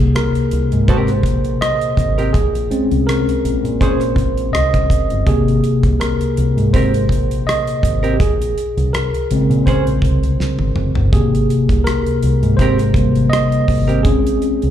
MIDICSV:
0, 0, Header, 1, 5, 480
1, 0, Start_track
1, 0, Key_signature, -4, "major"
1, 0, Tempo, 731707
1, 1536, Time_signature, 4, 2, 24, 8
1, 9646, End_track
2, 0, Start_track
2, 0, Title_t, "Hollow-body jazz guitar"
2, 0, Program_c, 0, 26
2, 578, Note_on_c, 0, 60, 73
2, 584, Note_on_c, 0, 67, 84
2, 585, Note_on_c, 0, 70, 83
2, 716, Note_off_c, 0, 60, 0
2, 719, Note_off_c, 0, 67, 0
2, 719, Note_off_c, 0, 70, 0
2, 1429, Note_on_c, 0, 70, 54
2, 1435, Note_on_c, 0, 60, 51
2, 1435, Note_on_c, 0, 67, 50
2, 1507, Note_off_c, 0, 70, 0
2, 1510, Note_off_c, 0, 60, 0
2, 1510, Note_off_c, 0, 67, 0
2, 2498, Note_on_c, 0, 61, 71
2, 2506, Note_on_c, 0, 68, 72
2, 2508, Note_on_c, 0, 72, 71
2, 2614, Note_off_c, 0, 61, 0
2, 2619, Note_off_c, 0, 68, 0
2, 2620, Note_off_c, 0, 72, 0
2, 4423, Note_on_c, 0, 60, 72
2, 4424, Note_on_c, 0, 67, 80
2, 4434, Note_on_c, 0, 70, 78
2, 4537, Note_off_c, 0, 60, 0
2, 4538, Note_off_c, 0, 67, 0
2, 4543, Note_off_c, 0, 70, 0
2, 5267, Note_on_c, 0, 70, 62
2, 5272, Note_on_c, 0, 60, 52
2, 5273, Note_on_c, 0, 67, 49
2, 5346, Note_off_c, 0, 70, 0
2, 5348, Note_off_c, 0, 60, 0
2, 5349, Note_off_c, 0, 67, 0
2, 6345, Note_on_c, 0, 61, 68
2, 6348, Note_on_c, 0, 68, 82
2, 6352, Note_on_c, 0, 72, 86
2, 6458, Note_off_c, 0, 61, 0
2, 6460, Note_off_c, 0, 68, 0
2, 6462, Note_off_c, 0, 72, 0
2, 8267, Note_on_c, 0, 60, 78
2, 8274, Note_on_c, 0, 67, 80
2, 8277, Note_on_c, 0, 70, 79
2, 8379, Note_off_c, 0, 60, 0
2, 8383, Note_off_c, 0, 67, 0
2, 8384, Note_off_c, 0, 70, 0
2, 9102, Note_on_c, 0, 70, 48
2, 9104, Note_on_c, 0, 67, 45
2, 9114, Note_on_c, 0, 60, 47
2, 9183, Note_off_c, 0, 70, 0
2, 9184, Note_off_c, 0, 67, 0
2, 9189, Note_off_c, 0, 60, 0
2, 9646, End_track
3, 0, Start_track
3, 0, Title_t, "Tine electric piano"
3, 0, Program_c, 1, 4
3, 0, Control_c, 1, 64, 127
3, 0, Note_on_c, 1, 48, 54
3, 0, Note_on_c, 1, 58, 56
3, 0, Note_on_c, 1, 67, 42
3, 0, Note_on_c, 1, 68, 86
3, 102, Note_on_c, 1, 70, 90
3, 115, Note_off_c, 1, 68, 0
3, 583, Note_on_c, 1, 72, 77
3, 593, Note_off_c, 1, 70, 0
3, 1057, Note_on_c, 1, 75, 101
3, 1074, Note_off_c, 1, 72, 0
3, 1399, Note_off_c, 1, 75, 0
3, 1527, Note_on_c, 1, 68, 78
3, 1545, Note_off_c, 1, 48, 0
3, 1545, Control_c, 1, 64, 0
3, 1547, Note_off_c, 1, 67, 0
3, 1550, Note_off_c, 1, 58, 0
3, 1669, Control_c, 1, 64, 127
3, 1776, Note_on_c, 1, 61, 50
3, 1778, Note_on_c, 1, 56, 50
3, 1780, Note_on_c, 1, 60, 63
3, 2012, Note_on_c, 1, 70, 86
3, 2026, Note_off_c, 1, 68, 0
3, 2102, Note_off_c, 1, 61, 0
3, 2103, Note_off_c, 1, 56, 0
3, 2104, Note_off_c, 1, 60, 0
3, 2499, Note_on_c, 1, 72, 84
3, 2508, Note_off_c, 1, 70, 0
3, 2951, Note_off_c, 1, 72, 0
3, 2972, Note_on_c, 1, 75, 100
3, 3317, Note_off_c, 1, 75, 0
3, 3457, Note_on_c, 1, 68, 86
3, 3460, Note_on_c, 1, 48, 52
3, 3463, Control_c, 1, 64, 0
3, 3464, Note_on_c, 1, 67, 45
3, 3466, Note_on_c, 1, 58, 54
3, 3595, Control_c, 1, 64, 127
3, 3910, Note_off_c, 1, 68, 0
3, 3936, Note_on_c, 1, 70, 82
3, 4418, Note_on_c, 1, 72, 75
3, 4430, Note_off_c, 1, 70, 0
3, 4899, Note_on_c, 1, 75, 89
3, 4911, Note_off_c, 1, 72, 0
3, 5240, Note_off_c, 1, 75, 0
3, 5328, Note_off_c, 1, 67, 0
3, 5336, Note_on_c, 1, 67, 57
3, 5352, Note_off_c, 1, 48, 0
3, 5355, Note_off_c, 1, 58, 0
3, 5378, Note_off_c, 1, 67, 0
3, 5379, Note_on_c, 1, 68, 78
3, 5384, Control_c, 1, 64, 0
3, 5481, Control_c, 1, 64, 127
3, 5859, Note_on_c, 1, 70, 77
3, 5872, Note_off_c, 1, 68, 0
3, 6105, Note_on_c, 1, 49, 54
3, 6111, Note_on_c, 1, 56, 48
3, 6114, Note_on_c, 1, 60, 55
3, 6336, Note_on_c, 1, 72, 72
3, 6352, Note_off_c, 1, 70, 0
3, 7030, Note_off_c, 1, 72, 0
3, 7274, Note_off_c, 1, 49, 0
3, 7277, Note_off_c, 1, 56, 0
3, 7279, Note_off_c, 1, 60, 0
3, 7299, Note_on_c, 1, 68, 82
3, 7302, Note_on_c, 1, 48, 51
3, 7304, Control_c, 1, 64, 0
3, 7309, Note_on_c, 1, 67, 49
3, 7311, Note_on_c, 1, 58, 57
3, 7426, Control_c, 1, 64, 127
3, 7625, Note_off_c, 1, 48, 0
3, 7628, Note_off_c, 1, 67, 0
3, 7629, Note_off_c, 1, 58, 0
3, 7769, Note_on_c, 1, 70, 87
3, 7792, Note_off_c, 1, 68, 0
3, 8226, Note_off_c, 1, 70, 0
3, 8244, Note_on_c, 1, 72, 81
3, 8498, Note_on_c, 1, 48, 48
3, 8499, Note_on_c, 1, 55, 44
3, 8505, Note_on_c, 1, 58, 51
3, 8704, Note_off_c, 1, 72, 0
3, 8713, Note_off_c, 1, 48, 0
3, 8714, Note_off_c, 1, 55, 0
3, 8717, Note_off_c, 1, 58, 0
3, 8722, Note_on_c, 1, 75, 100
3, 9071, Note_off_c, 1, 75, 0
3, 9204, Note_on_c, 1, 68, 88
3, 9223, Note_on_c, 1, 61, 58
3, 9225, Control_c, 1, 64, 0
3, 9229, Note_on_c, 1, 56, 46
3, 9230, Note_on_c, 1, 60, 56
3, 9318, Control_c, 1, 64, 127
3, 9646, Note_off_c, 1, 56, 0
3, 9646, Note_off_c, 1, 60, 0
3, 9646, Note_off_c, 1, 61, 0
3, 9646, Note_off_c, 1, 68, 0
3, 9646, End_track
4, 0, Start_track
4, 0, Title_t, "Fingered electric bass"
4, 0, Program_c, 2, 33
4, 0, Note_on_c, 2, 36, 83
4, 204, Note_off_c, 2, 36, 0
4, 343, Note_on_c, 2, 36, 78
4, 455, Note_off_c, 2, 36, 0
4, 475, Note_on_c, 2, 44, 85
4, 787, Note_off_c, 2, 44, 0
4, 814, Note_on_c, 2, 34, 71
4, 1031, Note_off_c, 2, 34, 0
4, 1298, Note_on_c, 2, 32, 84
4, 1513, Note_off_c, 2, 32, 0
4, 1542, Note_on_c, 2, 34, 85
4, 1755, Note_off_c, 2, 34, 0
4, 1911, Note_on_c, 2, 36, 78
4, 2124, Note_off_c, 2, 36, 0
4, 2259, Note_on_c, 2, 34, 84
4, 2373, Note_off_c, 2, 34, 0
4, 2388, Note_on_c, 2, 46, 93
4, 2736, Note_on_c, 2, 34, 82
4, 2745, Note_off_c, 2, 46, 0
4, 2952, Note_off_c, 2, 34, 0
4, 2983, Note_on_c, 2, 36, 86
4, 3196, Note_off_c, 2, 36, 0
4, 3350, Note_on_c, 2, 31, 75
4, 3448, Note_off_c, 2, 31, 0
4, 3459, Note_on_c, 2, 32, 96
4, 3674, Note_off_c, 2, 32, 0
4, 3832, Note_on_c, 2, 36, 76
4, 4044, Note_off_c, 2, 36, 0
4, 4184, Note_on_c, 2, 36, 79
4, 4296, Note_off_c, 2, 36, 0
4, 4310, Note_on_c, 2, 44, 87
4, 4624, Note_off_c, 2, 44, 0
4, 4657, Note_on_c, 2, 34, 85
4, 4872, Note_off_c, 2, 34, 0
4, 5143, Note_on_c, 2, 32, 74
4, 5356, Note_off_c, 2, 32, 0
4, 5383, Note_on_c, 2, 34, 90
4, 5596, Note_off_c, 2, 34, 0
4, 5754, Note_on_c, 2, 36, 90
4, 5966, Note_off_c, 2, 36, 0
4, 6107, Note_on_c, 2, 34, 83
4, 6218, Note_off_c, 2, 34, 0
4, 6229, Note_on_c, 2, 46, 100
4, 6328, Note_off_c, 2, 46, 0
4, 6470, Note_on_c, 2, 34, 75
4, 6568, Note_off_c, 2, 34, 0
4, 6578, Note_on_c, 2, 36, 69
4, 6692, Note_off_c, 2, 36, 0
4, 6706, Note_on_c, 2, 36, 72
4, 6806, Note_off_c, 2, 36, 0
4, 6947, Note_on_c, 2, 32, 80
4, 7046, Note_off_c, 2, 32, 0
4, 7057, Note_on_c, 2, 29, 70
4, 7172, Note_off_c, 2, 29, 0
4, 7190, Note_on_c, 2, 31, 69
4, 7288, Note_off_c, 2, 31, 0
4, 7307, Note_on_c, 2, 32, 94
4, 7518, Note_off_c, 2, 32, 0
4, 7674, Note_on_c, 2, 36, 77
4, 7886, Note_off_c, 2, 36, 0
4, 8023, Note_on_c, 2, 36, 83
4, 8135, Note_off_c, 2, 36, 0
4, 8152, Note_on_c, 2, 44, 98
4, 8494, Note_on_c, 2, 32, 71
4, 8504, Note_off_c, 2, 44, 0
4, 8711, Note_off_c, 2, 32, 0
4, 8980, Note_on_c, 2, 32, 88
4, 9221, Note_off_c, 2, 32, 0
4, 9221, Note_on_c, 2, 34, 97
4, 9435, Note_off_c, 2, 34, 0
4, 9598, Note_on_c, 2, 36, 80
4, 9646, Note_off_c, 2, 36, 0
4, 9646, End_track
5, 0, Start_track
5, 0, Title_t, "Drums"
5, 102, Note_on_c, 9, 42, 71
5, 105, Note_on_c, 9, 37, 108
5, 168, Note_off_c, 9, 42, 0
5, 170, Note_off_c, 9, 37, 0
5, 232, Note_on_c, 9, 42, 41
5, 298, Note_off_c, 9, 42, 0
5, 337, Note_on_c, 9, 42, 60
5, 403, Note_off_c, 9, 42, 0
5, 471, Note_on_c, 9, 42, 38
5, 537, Note_off_c, 9, 42, 0
5, 578, Note_on_c, 9, 36, 86
5, 579, Note_on_c, 9, 42, 65
5, 644, Note_off_c, 9, 36, 0
5, 645, Note_off_c, 9, 42, 0
5, 704, Note_on_c, 9, 37, 33
5, 709, Note_on_c, 9, 42, 42
5, 769, Note_off_c, 9, 37, 0
5, 775, Note_off_c, 9, 42, 0
5, 809, Note_on_c, 9, 36, 77
5, 825, Note_on_c, 9, 42, 60
5, 875, Note_off_c, 9, 36, 0
5, 890, Note_off_c, 9, 42, 0
5, 948, Note_on_c, 9, 42, 39
5, 1014, Note_off_c, 9, 42, 0
5, 1063, Note_on_c, 9, 37, 101
5, 1063, Note_on_c, 9, 42, 69
5, 1128, Note_off_c, 9, 42, 0
5, 1129, Note_off_c, 9, 37, 0
5, 1190, Note_on_c, 9, 42, 48
5, 1255, Note_off_c, 9, 42, 0
5, 1294, Note_on_c, 9, 36, 77
5, 1303, Note_on_c, 9, 42, 59
5, 1360, Note_off_c, 9, 36, 0
5, 1368, Note_off_c, 9, 42, 0
5, 1434, Note_on_c, 9, 42, 41
5, 1499, Note_off_c, 9, 42, 0
5, 1536, Note_on_c, 9, 36, 96
5, 1541, Note_on_c, 9, 42, 77
5, 1602, Note_off_c, 9, 36, 0
5, 1607, Note_off_c, 9, 42, 0
5, 1674, Note_on_c, 9, 42, 49
5, 1740, Note_off_c, 9, 42, 0
5, 1780, Note_on_c, 9, 42, 59
5, 1845, Note_off_c, 9, 42, 0
5, 1912, Note_on_c, 9, 42, 42
5, 1977, Note_off_c, 9, 42, 0
5, 2025, Note_on_c, 9, 42, 67
5, 2028, Note_on_c, 9, 37, 96
5, 2091, Note_off_c, 9, 42, 0
5, 2094, Note_off_c, 9, 37, 0
5, 2157, Note_on_c, 9, 42, 48
5, 2223, Note_off_c, 9, 42, 0
5, 2264, Note_on_c, 9, 42, 60
5, 2330, Note_off_c, 9, 42, 0
5, 2394, Note_on_c, 9, 42, 41
5, 2459, Note_off_c, 9, 42, 0
5, 2499, Note_on_c, 9, 36, 78
5, 2503, Note_on_c, 9, 42, 63
5, 2564, Note_off_c, 9, 36, 0
5, 2569, Note_off_c, 9, 42, 0
5, 2625, Note_on_c, 9, 37, 33
5, 2630, Note_on_c, 9, 42, 48
5, 2690, Note_off_c, 9, 37, 0
5, 2696, Note_off_c, 9, 42, 0
5, 2729, Note_on_c, 9, 36, 78
5, 2744, Note_on_c, 9, 42, 54
5, 2794, Note_off_c, 9, 36, 0
5, 2810, Note_off_c, 9, 42, 0
5, 2870, Note_on_c, 9, 42, 47
5, 2936, Note_off_c, 9, 42, 0
5, 2983, Note_on_c, 9, 37, 104
5, 2983, Note_on_c, 9, 42, 74
5, 3048, Note_off_c, 9, 42, 0
5, 3049, Note_off_c, 9, 37, 0
5, 3109, Note_on_c, 9, 36, 81
5, 3110, Note_on_c, 9, 42, 45
5, 3175, Note_off_c, 9, 36, 0
5, 3176, Note_off_c, 9, 42, 0
5, 3214, Note_on_c, 9, 36, 73
5, 3222, Note_on_c, 9, 42, 67
5, 3280, Note_off_c, 9, 36, 0
5, 3288, Note_off_c, 9, 42, 0
5, 3347, Note_on_c, 9, 42, 39
5, 3413, Note_off_c, 9, 42, 0
5, 3455, Note_on_c, 9, 36, 102
5, 3457, Note_on_c, 9, 42, 68
5, 3520, Note_off_c, 9, 36, 0
5, 3523, Note_off_c, 9, 42, 0
5, 3597, Note_on_c, 9, 42, 46
5, 3663, Note_off_c, 9, 42, 0
5, 3698, Note_on_c, 9, 42, 53
5, 3763, Note_off_c, 9, 42, 0
5, 3827, Note_on_c, 9, 36, 77
5, 3829, Note_on_c, 9, 42, 43
5, 3893, Note_off_c, 9, 36, 0
5, 3895, Note_off_c, 9, 42, 0
5, 3942, Note_on_c, 9, 42, 75
5, 3944, Note_on_c, 9, 37, 95
5, 4007, Note_off_c, 9, 42, 0
5, 4010, Note_off_c, 9, 37, 0
5, 4072, Note_on_c, 9, 42, 44
5, 4138, Note_off_c, 9, 42, 0
5, 4181, Note_on_c, 9, 42, 58
5, 4246, Note_off_c, 9, 42, 0
5, 4315, Note_on_c, 9, 42, 41
5, 4381, Note_off_c, 9, 42, 0
5, 4420, Note_on_c, 9, 36, 86
5, 4423, Note_on_c, 9, 42, 67
5, 4486, Note_off_c, 9, 36, 0
5, 4488, Note_off_c, 9, 42, 0
5, 4554, Note_on_c, 9, 42, 45
5, 4620, Note_off_c, 9, 42, 0
5, 4652, Note_on_c, 9, 36, 73
5, 4672, Note_on_c, 9, 42, 59
5, 4718, Note_off_c, 9, 36, 0
5, 4737, Note_off_c, 9, 42, 0
5, 4796, Note_on_c, 9, 42, 46
5, 4862, Note_off_c, 9, 42, 0
5, 4913, Note_on_c, 9, 37, 105
5, 4913, Note_on_c, 9, 42, 81
5, 4978, Note_off_c, 9, 42, 0
5, 4979, Note_off_c, 9, 37, 0
5, 5034, Note_on_c, 9, 42, 48
5, 5099, Note_off_c, 9, 42, 0
5, 5137, Note_on_c, 9, 36, 71
5, 5148, Note_on_c, 9, 42, 64
5, 5203, Note_off_c, 9, 36, 0
5, 5213, Note_off_c, 9, 42, 0
5, 5274, Note_on_c, 9, 42, 38
5, 5340, Note_off_c, 9, 42, 0
5, 5379, Note_on_c, 9, 36, 102
5, 5386, Note_on_c, 9, 42, 78
5, 5444, Note_off_c, 9, 36, 0
5, 5451, Note_off_c, 9, 42, 0
5, 5521, Note_on_c, 9, 42, 53
5, 5586, Note_off_c, 9, 42, 0
5, 5626, Note_on_c, 9, 42, 52
5, 5691, Note_off_c, 9, 42, 0
5, 5757, Note_on_c, 9, 42, 44
5, 5823, Note_off_c, 9, 42, 0
5, 5867, Note_on_c, 9, 42, 68
5, 5870, Note_on_c, 9, 37, 107
5, 5932, Note_off_c, 9, 42, 0
5, 5935, Note_off_c, 9, 37, 0
5, 5999, Note_on_c, 9, 42, 44
5, 6064, Note_off_c, 9, 42, 0
5, 6105, Note_on_c, 9, 42, 66
5, 6170, Note_off_c, 9, 42, 0
5, 6237, Note_on_c, 9, 42, 43
5, 6303, Note_off_c, 9, 42, 0
5, 6343, Note_on_c, 9, 36, 77
5, 6348, Note_on_c, 9, 42, 67
5, 6408, Note_off_c, 9, 36, 0
5, 6414, Note_off_c, 9, 42, 0
5, 6474, Note_on_c, 9, 42, 45
5, 6540, Note_off_c, 9, 42, 0
5, 6573, Note_on_c, 9, 36, 82
5, 6590, Note_on_c, 9, 42, 50
5, 6638, Note_off_c, 9, 36, 0
5, 6656, Note_off_c, 9, 42, 0
5, 6713, Note_on_c, 9, 42, 46
5, 6779, Note_off_c, 9, 42, 0
5, 6824, Note_on_c, 9, 38, 50
5, 6889, Note_off_c, 9, 38, 0
5, 6945, Note_on_c, 9, 48, 57
5, 7011, Note_off_c, 9, 48, 0
5, 7056, Note_on_c, 9, 45, 85
5, 7122, Note_off_c, 9, 45, 0
5, 7186, Note_on_c, 9, 43, 82
5, 7252, Note_off_c, 9, 43, 0
5, 7300, Note_on_c, 9, 36, 105
5, 7307, Note_on_c, 9, 42, 66
5, 7365, Note_off_c, 9, 36, 0
5, 7372, Note_off_c, 9, 42, 0
5, 7444, Note_on_c, 9, 42, 50
5, 7509, Note_off_c, 9, 42, 0
5, 7546, Note_on_c, 9, 42, 50
5, 7611, Note_off_c, 9, 42, 0
5, 7670, Note_on_c, 9, 36, 80
5, 7676, Note_on_c, 9, 42, 42
5, 7736, Note_off_c, 9, 36, 0
5, 7742, Note_off_c, 9, 42, 0
5, 7785, Note_on_c, 9, 42, 71
5, 7788, Note_on_c, 9, 37, 103
5, 7850, Note_off_c, 9, 42, 0
5, 7853, Note_off_c, 9, 37, 0
5, 7914, Note_on_c, 9, 42, 42
5, 7980, Note_off_c, 9, 42, 0
5, 8020, Note_on_c, 9, 42, 61
5, 8085, Note_off_c, 9, 42, 0
5, 8153, Note_on_c, 9, 42, 36
5, 8219, Note_off_c, 9, 42, 0
5, 8259, Note_on_c, 9, 36, 80
5, 8260, Note_on_c, 9, 42, 73
5, 8325, Note_off_c, 9, 36, 0
5, 8326, Note_off_c, 9, 42, 0
5, 8386, Note_on_c, 9, 37, 31
5, 8391, Note_on_c, 9, 42, 45
5, 8452, Note_off_c, 9, 37, 0
5, 8457, Note_off_c, 9, 42, 0
5, 8489, Note_on_c, 9, 36, 83
5, 8503, Note_on_c, 9, 42, 58
5, 8555, Note_off_c, 9, 36, 0
5, 8568, Note_off_c, 9, 42, 0
5, 8629, Note_on_c, 9, 42, 46
5, 8695, Note_off_c, 9, 42, 0
5, 8746, Note_on_c, 9, 37, 108
5, 8746, Note_on_c, 9, 42, 77
5, 8811, Note_off_c, 9, 42, 0
5, 8812, Note_off_c, 9, 37, 0
5, 8870, Note_on_c, 9, 42, 44
5, 8936, Note_off_c, 9, 42, 0
5, 8975, Note_on_c, 9, 36, 74
5, 8983, Note_on_c, 9, 46, 52
5, 9041, Note_off_c, 9, 36, 0
5, 9048, Note_off_c, 9, 46, 0
5, 9111, Note_on_c, 9, 42, 39
5, 9177, Note_off_c, 9, 42, 0
5, 9216, Note_on_c, 9, 36, 105
5, 9220, Note_on_c, 9, 42, 75
5, 9281, Note_off_c, 9, 36, 0
5, 9285, Note_off_c, 9, 42, 0
5, 9358, Note_on_c, 9, 42, 54
5, 9424, Note_off_c, 9, 42, 0
5, 9459, Note_on_c, 9, 42, 52
5, 9525, Note_off_c, 9, 42, 0
5, 9592, Note_on_c, 9, 42, 40
5, 9646, Note_off_c, 9, 42, 0
5, 9646, End_track
0, 0, End_of_file